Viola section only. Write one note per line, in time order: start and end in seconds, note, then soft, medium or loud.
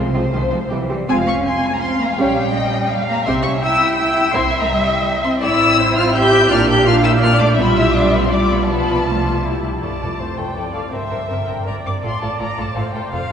0.16 0.23 F3 soft
0.16 0.23 G#3 soft
0.35 0.42 F3 medium
0.35 0.42 G#3 soft
0.52 0.60 F3 soft
0.52 0.60 G#3 soft
0.71 0.79 E3 soft
0.71 0.79 G3 soft
0.90 0.97 E3 soft
0.90 0.97 G3 soft
1.08 1.25 C4 medium
1.08 1.25 F4 medium
2.19 2.35 C#4 medium
2.19 2.35 G4 medium
3.27 3.44 C4 medium
3.27 3.44 G4 medium
4.34 4.51 C4 medium
4.34 4.51 E4 medium
5.42 6.46 C4 medium
5.42 6.46 E4 medium
6.49 7.21 A#3 medium
6.49 7.20 D4 medium
7.22 7.30 A#3 medium
7.22 7.57 D4 medium
7.41 7.58 A3 medium
7.58 7.94 G3 medium
7.58 7.94 F4 medium
7.95 8.31 G3 medium
7.95 8.31 F4 medium
8.32 8.69 G3 medium
8.32 8.68 F4 medium
8.69 9.06 F3 medium
8.69 9.06 F4 medium
9.07 9.45 F3 medium
9.07 9.45 F4 medium
9.45 9.65 G3 medium
9.45 9.65 E4 medium
9.84 10.18 D5 soft
10.21 10.58 C5 soft
10.56 10.94 D5 soft
10.94 11.30 C5 soft
11.31 11.67 A#4 soft
11.66 12.75 D5 medium
12.76 13.32 C5 soft